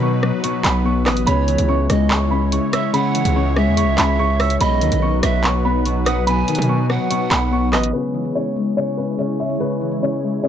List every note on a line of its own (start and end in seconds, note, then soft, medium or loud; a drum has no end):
0.00 0.32 B2 loud
0.00 0.43 B2 medium
0.00 1.24 F#3 medium
0.00 0.64 B3 medium
0.00 0.21 C#4 medium
0.00 1.24 D#4 medium
0.00 1.06 B4 medium
0.00 1.24 B4 medium
0.00 0.41 C#6 medium
0.23 1.32 F#3 medium
0.23 cross-stick medium
0.44 0.85 B2 medium
0.44 0.63 C#6 medium
0.44 closed hi-hat medium
0.64 1.08 B1 loud
0.64 3.75 B3 medium
0.64 0.83 B5 medium
0.64 clap loud
0.64 closed hi-hat medium
0.85 1.32 B2 medium
0.85 1.04 C#6 medium
1.06 1.26 A1 loud
1.06 3.12 B4 medium
1.06 1.25 D#6 medium
1.06 cross-stick loud
1.06 clap medium
1.06 open hi-hat medium
1.17 closed hi-hat medium
1.27 1.57 C#2 loud
1.27 1.67 C#3 loud
1.27 4.57 G#3 medium
1.27 4.57 E4 medium
1.27 1.86 C#5 medium
1.27 4.57 C#5 medium
1.27 1.66 B5 loud
1.27 closed hi-hat medium
1.48 1.74 E3 medium
1.48 closed hi-hat medium
1.58 1.88 C#2 loud
1.58 closed hi-hat medium
1.68 2.09 C#3 medium
1.68 2.08 C#6 medium
1.90 2.60 C#2 loud
1.90 3.55 G#3 medium
1.90 2.09 D#5 medium
1.90 cross-stick medium
1.90 closed hi-hat medium
2.10 2.51 C#3 medium
2.10 2.29 C#6 medium
2.10 clap loud
2.31 3.97 C#4 medium
2.31 2.50 B5 medium
2.52 2.92 C#3 medium
2.52 2.71 C#6 medium
2.52 closed hi-hat medium
2.73 4.40 C#5 medium
2.73 2.93 E5 medium
2.73 2.92 E6 medium
2.73 cross-stick loud
2.73 closed hi-hat medium
2.93 3.35 C#3 loud
2.93 3.53 F#5 loud
2.93 3.33 B5 loud
2.93 closed hi-hat medium
3.15 3.41 E3 medium
3.15 closed hi-hat medium
3.25 3.68 C#2 loud
3.25 closed hi-hat medium
3.36 3.76 C#3 medium
3.36 3.75 C#6 medium
3.56 4.66 G#3 medium
3.56 4.56 E5 loud
3.56 cross-stick medium
3.67 3.84 E2 loud
3.77 4.18 C#3 medium
3.77 3.96 C#6 medium
3.77 closed hi-hat medium
3.82 3.97 C#2 loud
3.98 4.58 C#2 loud
3.98 6.87 C#4 medium
3.98 4.17 B5 medium
3.98 clap loud
3.98 closed hi-hat medium
4.19 4.66 C#3 medium
4.19 4.38 C#6 loud
4.40 6.31 C#5 medium
4.40 4.59 E6 medium
4.40 cross-stick loud
4.40 open hi-hat medium
4.50 closed hi-hat medium
4.60 4.83 B1 loud
4.60 4.86 B2 medium
4.60 7.91 F#3 medium
4.60 7.91 D#4 medium
4.60 7.91 B4 medium
4.60 5.19 D#5 loud
4.60 5.00 B5 loud
4.60 closed hi-hat medium
4.81 4.91 D#2 loud
4.81 5.07 D#3 medium
4.81 closed hi-hat medium
4.92 5.22 B1 loud
4.92 closed hi-hat medium
5.02 5.43 B2 medium
5.02 5.41 C#6 medium
5.23 6.44 B1 loud
5.23 6.53 F#3 medium
5.23 5.43 E5 medium
5.23 cross-stick medium
5.23 closed hi-hat medium
5.44 5.85 B2 medium
5.44 5.63 C#6 medium
5.44 clap loud
5.65 7.31 B3 medium
5.65 5.84 B5 medium
5.86 6.26 B2 medium
5.86 6.04 C#6 medium
5.86 closed hi-hat medium
6.06 7.73 B4 medium
6.06 6.26 F#5 medium
6.06 6.25 D#6 medium
6.06 cross-stick loud
6.06 closed hi-hat medium
6.27 6.53 B2 medium
6.27 6.86 G#5 loud
6.27 6.66 B5 loud
6.27 closed hi-hat medium
6.48 6.74 D#3 medium
6.48 closed hi-hat medium
6.55 6.98 B2 loud
6.55 closed hi-hat medium
6.62 closed hi-hat medium
6.69 7.10 B2 medium
6.69 7.08 C#6 medium
6.89 7.99 F#3 medium
6.89 7.69 F#5 medium
6.89 cross-stick medium
7.11 7.51 B2 medium
7.11 7.29 C#6 medium
7.11 closed hi-hat medium
7.31 7.75 B1 loud
7.31 10.42 B3 medium
7.31 7.50 B5 medium
7.31 clap loud
7.31 closed hi-hat medium
7.52 7.99 B2 medium
7.52 7.71 C#6 medium
7.72 7.93 A1 loud
7.72 9.78 B4 medium
7.72 7.93 D#5 medium
7.72 7.91 D#6 medium
7.72 cross-stick loud
7.72 clap medium
7.72 open hi-hat medium
7.84 closed hi-hat medium
7.93 8.34 C#3 loud
7.93 10.48 G#3 medium
7.93 10.48 E4 medium
7.93 8.33 B4 medium
7.93 10.48 C#5 medium
8.14 8.41 E3 medium
8.14 closed hi-hat medium
8.25 closed hi-hat medium
8.35 8.76 C#3 medium
8.35 8.75 C#5 medium
8.56 10.22 G#3 medium
8.56 closed hi-hat medium
8.77 9.17 C#3 medium
8.77 8.96 C#5 medium
8.97 10.48 C#4 medium
8.97 9.17 B4 medium
9.19 9.59 C#3 medium
9.19 9.38 C#5 medium
9.19 closed hi-hat medium
9.39 10.48 C#5 medium
9.39 9.59 E5 medium
9.39 closed hi-hat soft
9.45 closed hi-hat medium
9.50 closed hi-hat medium
9.55 closed hi-hat medium
9.60 10.01 C#3 medium
9.60 10.00 B4 medium
9.60 closed hi-hat medium
9.81 10.07 E3 medium
9.81 closed hi-hat medium
9.92 closed hi-hat medium
10.02 10.42 C#3 medium
10.02 10.42 C#5 medium
10.23 10.48 G#3 medium
10.43 10.48 C#3 medium
10.43 10.48 C#5 medium
10.43 closed hi-hat medium